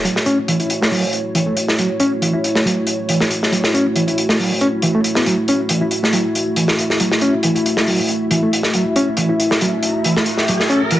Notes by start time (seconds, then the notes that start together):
Already playing: A3 E4 F#4 C#5
0.05 F#3, closed hi-hat
0.16 snare
0.26 C#4, closed hi-hat
0.48 E3, closed hi-hat
0.60 E4, closed hi-hat
0.70 closed hi-hat
0.81 A3, snare
0.92 F#3, open hi-hat
1.13 closed hi-hat
1.35 E3, closed hi-hat
1.46 A3
1.57 closed hi-hat
1.68 snare
1.79 F#3, closed hi-hat
2.00 C#4, closed hi-hat
2.22 E3, closed hi-hat
2.33 E4
2.44 closed hi-hat
2.55 A3, snare
2.65 F#3, closed hi-hat
2.87 closed hi-hat
3.09 E3, closed hi-hat
3.20 A3, snare
3.31 closed hi-hat
3.43 snare
3.52 F#3, closed hi-hat
3.64 snare
3.74 C#4, closed hi-hat
3.96 E3, closed hi-hat
4.08 E4, closed hi-hat
4.18 closed hi-hat
4.29 A3, snare
4.40 F#3, open hi-hat
4.61 C#4, closed hi-hat
4.82 E3, closed hi-hat
4.95 A3
5.04 closed hi-hat
5.15 B3, snare
5.26 F#3 E5, closed hi-hat
5.48 C#4, closed hi-hat
5.69 E3, closed hi-hat
5.81 E4
5.91 closed hi-hat
6.03 A3, snare
6.13 F#3, closed hi-hat
6.35 closed hi-hat
6.56 E3, closed hi-hat
6.68 A3, snare
6.79 closed hi-hat
6.90 snare
7.00 F#3, closed hi-hat
7.11 snare
7.21 C#4, closed hi-hat
7.43 E3, closed hi-hat
7.55 E4, closed hi-hat
7.66 closed hi-hat
7.77 A3, snare
7.87 F#3, open hi-hat
8.08 closed hi-hat
8.31 E3, closed hi-hat
8.43 A3
8.53 closed hi-hat
8.63 snare
8.73 F#3, closed hi-hat, riser
8.96 C#4, closed hi-hat
9.17 E3, closed hi-hat
9.29 E4
9.40 closed hi-hat
9.51 A3, snare
9.61 F#3, closed hi-hat
9.83 closed hi-hat
10.04 E3, closed hi-hat
10.16 A3, snare
10.26 closed hi-hat
10.37 snare
10.48 F#3, closed hi-hat
10.60 snare
10.70 C#4, closed hi-hat
10.91 E3, closed hi-hat